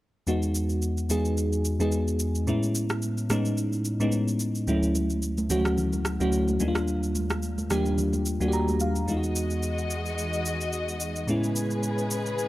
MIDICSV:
0, 0, Header, 1, 4, 480
1, 0, Start_track
1, 0, Key_signature, 4, "major"
1, 0, Tempo, 550459
1, 236, Time_signature, 4, 2, 24, 8
1, 10884, End_track
2, 0, Start_track
2, 0, Title_t, "String section"
2, 0, Program_c, 0, 48
2, 7917, Note_on_c, 0, 52, 74
2, 7918, Note_on_c, 0, 56, 70
2, 7918, Note_on_c, 0, 66, 68
2, 7918, Note_on_c, 0, 75, 88
2, 9817, Note_off_c, 0, 52, 0
2, 9818, Note_off_c, 0, 56, 0
2, 9818, Note_off_c, 0, 66, 0
2, 9818, Note_off_c, 0, 75, 0
2, 9838, Note_on_c, 0, 49, 77
2, 9838, Note_on_c, 0, 56, 71
2, 9838, Note_on_c, 0, 68, 70
2, 9838, Note_on_c, 0, 71, 83
2, 10884, Note_off_c, 0, 49, 0
2, 10884, Note_off_c, 0, 56, 0
2, 10884, Note_off_c, 0, 68, 0
2, 10884, Note_off_c, 0, 71, 0
2, 10884, End_track
3, 0, Start_track
3, 0, Title_t, "FM electric piano"
3, 0, Program_c, 1, 5
3, 234, Note_on_c, 1, 40, 79
3, 239, Note_on_c, 1, 56, 72
3, 242, Note_on_c, 1, 59, 76
3, 246, Note_on_c, 1, 63, 73
3, 249, Note_on_c, 1, 66, 83
3, 411, Control_c, 1, 64, 127
3, 820, Note_off_c, 1, 40, 0
3, 823, Note_off_c, 1, 56, 0
3, 824, Note_off_c, 1, 59, 0
3, 826, Note_off_c, 1, 63, 0
3, 828, Note_off_c, 1, 66, 0
3, 954, Note_on_c, 1, 40, 83
3, 958, Note_on_c, 1, 56, 76
3, 962, Note_on_c, 1, 59, 72
3, 965, Note_on_c, 1, 63, 72
3, 969, Note_on_c, 1, 68, 88
3, 1435, Note_off_c, 1, 40, 0
3, 1437, Note_off_c, 1, 56, 0
3, 1439, Note_off_c, 1, 59, 0
3, 1441, Note_off_c, 1, 63, 0
3, 1442, Note_off_c, 1, 68, 0
3, 1566, Note_on_c, 1, 40, 83
3, 1570, Note_on_c, 1, 56, 76
3, 1573, Note_on_c, 1, 59, 76
3, 1577, Note_on_c, 1, 63, 76
3, 1580, Note_on_c, 1, 68, 90
3, 2047, Note_off_c, 1, 40, 0
3, 2049, Note_off_c, 1, 56, 0
3, 2051, Note_off_c, 1, 59, 0
3, 2053, Note_off_c, 1, 63, 0
3, 2054, Note_off_c, 1, 68, 0
3, 2154, Note_on_c, 1, 45, 81
3, 2157, Note_on_c, 1, 56, 72
3, 2161, Note_on_c, 1, 59, 75
3, 2165, Note_on_c, 1, 61, 74
3, 2167, Control_c, 1, 64, 0
3, 2169, Note_on_c, 1, 64, 88
3, 2317, Control_c, 1, 64, 127
3, 2741, Note_off_c, 1, 45, 0
3, 2742, Note_off_c, 1, 56, 0
3, 2744, Note_off_c, 1, 59, 0
3, 2746, Note_off_c, 1, 61, 0
3, 2748, Note_off_c, 1, 64, 0
3, 2875, Note_on_c, 1, 45, 80
3, 2878, Note_on_c, 1, 56, 77
3, 2880, Note_on_c, 1, 59, 75
3, 2885, Note_on_c, 1, 61, 76
3, 2889, Note_on_c, 1, 63, 90
3, 3355, Note_off_c, 1, 45, 0
3, 3357, Note_off_c, 1, 56, 0
3, 3358, Note_off_c, 1, 59, 0
3, 3361, Note_off_c, 1, 61, 0
3, 3363, Note_off_c, 1, 63, 0
3, 3486, Note_on_c, 1, 45, 82
3, 3491, Note_on_c, 1, 56, 80
3, 3495, Note_on_c, 1, 59, 79
3, 3499, Note_on_c, 1, 61, 81
3, 3502, Note_on_c, 1, 63, 89
3, 3967, Note_off_c, 1, 45, 0
3, 3970, Note_off_c, 1, 56, 0
3, 3972, Note_off_c, 1, 59, 0
3, 3973, Note_off_c, 1, 61, 0
3, 3975, Note_off_c, 1, 63, 0
3, 4074, Note_on_c, 1, 38, 83
3, 4077, Note_on_c, 1, 54, 74
3, 4082, Note_on_c, 1, 57, 73
3, 4085, Note_on_c, 1, 61, 78
3, 4087, Control_c, 1, 64, 0
3, 4088, Note_on_c, 1, 64, 85
3, 4227, Control_c, 1, 64, 127
3, 4661, Note_off_c, 1, 38, 0
3, 4662, Note_off_c, 1, 54, 0
3, 4664, Note_off_c, 1, 57, 0
3, 4666, Note_off_c, 1, 61, 0
3, 4668, Note_off_c, 1, 64, 0
3, 4793, Note_on_c, 1, 38, 84
3, 4796, Note_on_c, 1, 54, 74
3, 4800, Note_on_c, 1, 57, 78
3, 4804, Note_on_c, 1, 61, 78
3, 4807, Note_on_c, 1, 66, 95
3, 5274, Note_off_c, 1, 38, 0
3, 5276, Note_off_c, 1, 54, 0
3, 5278, Note_off_c, 1, 57, 0
3, 5280, Note_off_c, 1, 61, 0
3, 5281, Note_off_c, 1, 66, 0
3, 5404, Note_on_c, 1, 38, 84
3, 5408, Note_on_c, 1, 54, 76
3, 5412, Note_on_c, 1, 57, 79
3, 5415, Note_on_c, 1, 61, 77
3, 5419, Note_on_c, 1, 66, 93
3, 5754, Note_off_c, 1, 38, 0
3, 5754, Note_on_c, 1, 39, 80
3, 5756, Note_off_c, 1, 54, 0
3, 5757, Note_on_c, 1, 55, 75
3, 5758, Note_off_c, 1, 57, 0
3, 5759, Note_off_c, 1, 61, 0
3, 5761, Note_off_c, 1, 66, 0
3, 5761, Note_on_c, 1, 58, 73
3, 5765, Note_on_c, 1, 62, 76
3, 5768, Control_c, 1, 64, 0
3, 5769, Note_on_c, 1, 63, 70
3, 5825, Note_off_c, 1, 63, 0
3, 5825, Note_on_c, 1, 65, 94
3, 5933, Control_c, 1, 64, 127
3, 6528, Note_off_c, 1, 39, 0
3, 6529, Note_off_c, 1, 55, 0
3, 6531, Note_off_c, 1, 58, 0
3, 6533, Note_off_c, 1, 62, 0
3, 6563, Note_off_c, 1, 65, 0
3, 6715, Note_on_c, 1, 39, 80
3, 6717, Note_on_c, 1, 55, 76
3, 6721, Note_on_c, 1, 58, 76
3, 6725, Note_on_c, 1, 62, 77
3, 6729, Note_on_c, 1, 67, 97
3, 7195, Note_off_c, 1, 39, 0
3, 7197, Note_off_c, 1, 55, 0
3, 7199, Note_off_c, 1, 58, 0
3, 7201, Note_off_c, 1, 62, 0
3, 7203, Note_off_c, 1, 67, 0
3, 7326, Note_on_c, 1, 39, 82
3, 7329, Note_on_c, 1, 55, 80
3, 7334, Note_on_c, 1, 58, 77
3, 7337, Note_on_c, 1, 62, 77
3, 7339, Note_on_c, 1, 66, 77
3, 7385, Note_off_c, 1, 66, 0
3, 7397, Note_on_c, 1, 67, 94
3, 7441, Note_on_c, 1, 82, 71
3, 7662, Note_off_c, 1, 82, 0
3, 7684, Note_on_c, 1, 77, 66
3, 7807, Note_off_c, 1, 39, 0
3, 7809, Note_off_c, 1, 55, 0
3, 7811, Note_off_c, 1, 58, 0
3, 7813, Note_off_c, 1, 62, 0
3, 7843, Note_off_c, 1, 67, 0
3, 7903, Note_off_c, 1, 77, 0
3, 7905, Note_on_c, 1, 40, 70
3, 7914, Note_on_c, 1, 56, 64
3, 7921, Note_on_c, 1, 59, 63
3, 7927, Control_c, 1, 64, 0
3, 7927, Note_on_c, 1, 63, 68
3, 7935, Note_on_c, 1, 65, 65
3, 7988, Note_off_c, 1, 65, 0
3, 7993, Note_on_c, 1, 66, 76
3, 8058, Control_c, 1, 64, 127
3, 9796, Note_off_c, 1, 40, 0
3, 9800, Note_off_c, 1, 56, 0
3, 9804, Note_off_c, 1, 59, 0
3, 9807, Note_off_c, 1, 63, 0
3, 9828, Note_on_c, 1, 45, 70
3, 9835, Note_on_c, 1, 56, 62
3, 9839, Note_off_c, 1, 66, 0
3, 9842, Note_on_c, 1, 59, 65
3, 9847, Control_c, 1, 64, 0
3, 9849, Note_on_c, 1, 61, 65
3, 9857, Note_on_c, 1, 64, 79
3, 10026, Control_c, 1, 64, 127
3, 10884, Note_off_c, 1, 45, 0
3, 10884, Note_off_c, 1, 56, 0
3, 10884, Note_off_c, 1, 59, 0
3, 10884, Note_off_c, 1, 61, 0
3, 10884, Note_off_c, 1, 64, 0
3, 10884, End_track
4, 0, Start_track
4, 0, Title_t, "Drums"
4, 236, Note_on_c, 9, 82, 58
4, 323, Note_off_c, 9, 82, 0
4, 372, Note_on_c, 9, 82, 49
4, 459, Note_off_c, 9, 82, 0
4, 477, Note_on_c, 9, 82, 88
4, 564, Note_off_c, 9, 82, 0
4, 605, Note_on_c, 9, 82, 49
4, 692, Note_off_c, 9, 82, 0
4, 715, Note_on_c, 9, 82, 74
4, 802, Note_off_c, 9, 82, 0
4, 850, Note_on_c, 9, 82, 46
4, 937, Note_off_c, 9, 82, 0
4, 956, Note_on_c, 9, 82, 95
4, 1044, Note_off_c, 9, 82, 0
4, 1090, Note_on_c, 9, 82, 47
4, 1177, Note_off_c, 9, 82, 0
4, 1198, Note_on_c, 9, 82, 68
4, 1285, Note_off_c, 9, 82, 0
4, 1330, Note_on_c, 9, 82, 46
4, 1417, Note_off_c, 9, 82, 0
4, 1437, Note_on_c, 9, 82, 89
4, 1524, Note_off_c, 9, 82, 0
4, 1571, Note_on_c, 9, 82, 55
4, 1658, Note_off_c, 9, 82, 0
4, 1672, Note_on_c, 9, 82, 66
4, 1759, Note_off_c, 9, 82, 0
4, 1811, Note_on_c, 9, 82, 52
4, 1898, Note_off_c, 9, 82, 0
4, 1913, Note_on_c, 9, 82, 89
4, 2000, Note_off_c, 9, 82, 0
4, 2049, Note_on_c, 9, 82, 57
4, 2137, Note_off_c, 9, 82, 0
4, 2157, Note_on_c, 9, 82, 55
4, 2244, Note_off_c, 9, 82, 0
4, 2292, Note_on_c, 9, 82, 49
4, 2379, Note_off_c, 9, 82, 0
4, 2396, Note_on_c, 9, 82, 92
4, 2484, Note_off_c, 9, 82, 0
4, 2526, Note_on_c, 9, 82, 48
4, 2529, Note_on_c, 9, 37, 89
4, 2613, Note_off_c, 9, 82, 0
4, 2616, Note_off_c, 9, 37, 0
4, 2634, Note_on_c, 9, 82, 69
4, 2721, Note_off_c, 9, 82, 0
4, 2770, Note_on_c, 9, 82, 47
4, 2857, Note_off_c, 9, 82, 0
4, 2876, Note_on_c, 9, 82, 93
4, 2878, Note_on_c, 9, 37, 86
4, 2963, Note_off_c, 9, 82, 0
4, 2965, Note_off_c, 9, 37, 0
4, 3010, Note_on_c, 9, 82, 50
4, 3097, Note_off_c, 9, 82, 0
4, 3118, Note_on_c, 9, 82, 68
4, 3205, Note_off_c, 9, 82, 0
4, 3249, Note_on_c, 9, 82, 48
4, 3336, Note_off_c, 9, 82, 0
4, 3356, Note_on_c, 9, 82, 84
4, 3443, Note_off_c, 9, 82, 0
4, 3491, Note_on_c, 9, 82, 55
4, 3578, Note_off_c, 9, 82, 0
4, 3592, Note_on_c, 9, 82, 66
4, 3679, Note_off_c, 9, 82, 0
4, 3730, Note_on_c, 9, 82, 51
4, 3817, Note_off_c, 9, 82, 0
4, 3832, Note_on_c, 9, 82, 88
4, 3919, Note_off_c, 9, 82, 0
4, 3968, Note_on_c, 9, 82, 57
4, 4055, Note_off_c, 9, 82, 0
4, 4076, Note_on_c, 9, 82, 59
4, 4164, Note_off_c, 9, 82, 0
4, 4211, Note_on_c, 9, 82, 50
4, 4298, Note_off_c, 9, 82, 0
4, 4315, Note_on_c, 9, 63, 67
4, 4317, Note_on_c, 9, 82, 87
4, 4403, Note_off_c, 9, 63, 0
4, 4404, Note_off_c, 9, 82, 0
4, 4446, Note_on_c, 9, 82, 48
4, 4533, Note_off_c, 9, 82, 0
4, 4553, Note_on_c, 9, 82, 69
4, 4641, Note_off_c, 9, 82, 0
4, 4689, Note_on_c, 9, 82, 46
4, 4690, Note_on_c, 9, 63, 74
4, 4776, Note_off_c, 9, 82, 0
4, 4777, Note_off_c, 9, 63, 0
4, 4794, Note_on_c, 9, 82, 92
4, 4796, Note_on_c, 9, 64, 71
4, 4882, Note_off_c, 9, 82, 0
4, 4883, Note_off_c, 9, 64, 0
4, 4929, Note_on_c, 9, 37, 93
4, 4930, Note_on_c, 9, 82, 49
4, 5016, Note_off_c, 9, 37, 0
4, 5017, Note_off_c, 9, 82, 0
4, 5037, Note_on_c, 9, 82, 69
4, 5038, Note_on_c, 9, 64, 76
4, 5125, Note_off_c, 9, 82, 0
4, 5126, Note_off_c, 9, 64, 0
4, 5169, Note_on_c, 9, 63, 66
4, 5169, Note_on_c, 9, 82, 48
4, 5256, Note_off_c, 9, 63, 0
4, 5256, Note_off_c, 9, 82, 0
4, 5275, Note_on_c, 9, 37, 84
4, 5277, Note_on_c, 9, 82, 90
4, 5362, Note_off_c, 9, 37, 0
4, 5364, Note_off_c, 9, 82, 0
4, 5411, Note_on_c, 9, 82, 57
4, 5498, Note_off_c, 9, 82, 0
4, 5513, Note_on_c, 9, 82, 67
4, 5600, Note_off_c, 9, 82, 0
4, 5647, Note_on_c, 9, 63, 64
4, 5651, Note_on_c, 9, 82, 50
4, 5734, Note_off_c, 9, 63, 0
4, 5738, Note_off_c, 9, 82, 0
4, 5753, Note_on_c, 9, 82, 92
4, 5840, Note_off_c, 9, 82, 0
4, 5888, Note_on_c, 9, 37, 95
4, 5888, Note_on_c, 9, 82, 58
4, 5975, Note_off_c, 9, 37, 0
4, 5975, Note_off_c, 9, 82, 0
4, 5996, Note_on_c, 9, 82, 59
4, 6083, Note_off_c, 9, 82, 0
4, 6131, Note_on_c, 9, 82, 50
4, 6218, Note_off_c, 9, 82, 0
4, 6235, Note_on_c, 9, 63, 66
4, 6236, Note_on_c, 9, 82, 92
4, 6323, Note_off_c, 9, 63, 0
4, 6323, Note_off_c, 9, 82, 0
4, 6366, Note_on_c, 9, 82, 50
4, 6369, Note_on_c, 9, 37, 92
4, 6453, Note_off_c, 9, 82, 0
4, 6456, Note_off_c, 9, 37, 0
4, 6474, Note_on_c, 9, 82, 70
4, 6561, Note_off_c, 9, 82, 0
4, 6610, Note_on_c, 9, 63, 72
4, 6611, Note_on_c, 9, 82, 48
4, 6697, Note_off_c, 9, 63, 0
4, 6698, Note_off_c, 9, 82, 0
4, 6717, Note_on_c, 9, 82, 93
4, 6718, Note_on_c, 9, 63, 51
4, 6718, Note_on_c, 9, 64, 73
4, 6719, Note_on_c, 9, 37, 87
4, 6804, Note_off_c, 9, 82, 0
4, 6805, Note_off_c, 9, 63, 0
4, 6805, Note_off_c, 9, 64, 0
4, 6806, Note_off_c, 9, 37, 0
4, 6851, Note_on_c, 9, 82, 50
4, 6938, Note_off_c, 9, 82, 0
4, 6958, Note_on_c, 9, 82, 69
4, 6959, Note_on_c, 9, 64, 72
4, 7045, Note_off_c, 9, 82, 0
4, 7046, Note_off_c, 9, 64, 0
4, 7090, Note_on_c, 9, 63, 70
4, 7090, Note_on_c, 9, 82, 51
4, 7177, Note_off_c, 9, 63, 0
4, 7177, Note_off_c, 9, 82, 0
4, 7198, Note_on_c, 9, 82, 87
4, 7285, Note_off_c, 9, 82, 0
4, 7332, Note_on_c, 9, 82, 55
4, 7419, Note_off_c, 9, 82, 0
4, 7433, Note_on_c, 9, 82, 69
4, 7520, Note_off_c, 9, 82, 0
4, 7566, Note_on_c, 9, 63, 65
4, 7571, Note_on_c, 9, 82, 51
4, 7653, Note_off_c, 9, 63, 0
4, 7658, Note_off_c, 9, 82, 0
4, 7673, Note_on_c, 9, 82, 93
4, 7760, Note_off_c, 9, 82, 0
4, 7810, Note_on_c, 9, 82, 58
4, 7897, Note_off_c, 9, 82, 0
4, 7917, Note_on_c, 9, 82, 56
4, 8004, Note_off_c, 9, 82, 0
4, 8052, Note_on_c, 9, 82, 50
4, 8139, Note_off_c, 9, 82, 0
4, 8157, Note_on_c, 9, 82, 86
4, 8244, Note_off_c, 9, 82, 0
4, 8286, Note_on_c, 9, 82, 49
4, 8374, Note_off_c, 9, 82, 0
4, 8395, Note_on_c, 9, 82, 73
4, 8482, Note_off_c, 9, 82, 0
4, 8530, Note_on_c, 9, 82, 46
4, 8617, Note_off_c, 9, 82, 0
4, 8636, Note_on_c, 9, 82, 89
4, 8723, Note_off_c, 9, 82, 0
4, 8770, Note_on_c, 9, 82, 48
4, 8857, Note_off_c, 9, 82, 0
4, 8878, Note_on_c, 9, 82, 69
4, 8965, Note_off_c, 9, 82, 0
4, 9009, Note_on_c, 9, 82, 47
4, 9097, Note_off_c, 9, 82, 0
4, 9117, Note_on_c, 9, 82, 86
4, 9204, Note_off_c, 9, 82, 0
4, 9251, Note_on_c, 9, 82, 57
4, 9338, Note_off_c, 9, 82, 0
4, 9353, Note_on_c, 9, 82, 67
4, 9440, Note_off_c, 9, 82, 0
4, 9491, Note_on_c, 9, 82, 50
4, 9579, Note_off_c, 9, 82, 0
4, 9593, Note_on_c, 9, 82, 91
4, 9680, Note_off_c, 9, 82, 0
4, 9729, Note_on_c, 9, 82, 54
4, 9817, Note_off_c, 9, 82, 0
4, 9837, Note_on_c, 9, 82, 55
4, 9924, Note_off_c, 9, 82, 0
4, 9972, Note_on_c, 9, 82, 51
4, 10059, Note_off_c, 9, 82, 0
4, 10078, Note_on_c, 9, 82, 88
4, 10165, Note_off_c, 9, 82, 0
4, 10207, Note_on_c, 9, 82, 49
4, 10294, Note_off_c, 9, 82, 0
4, 10315, Note_on_c, 9, 82, 67
4, 10403, Note_off_c, 9, 82, 0
4, 10450, Note_on_c, 9, 82, 46
4, 10537, Note_off_c, 9, 82, 0
4, 10557, Note_on_c, 9, 82, 97
4, 10644, Note_off_c, 9, 82, 0
4, 10691, Note_on_c, 9, 82, 51
4, 10778, Note_off_c, 9, 82, 0
4, 10799, Note_on_c, 9, 82, 65
4, 10884, Note_off_c, 9, 82, 0
4, 10884, End_track
0, 0, End_of_file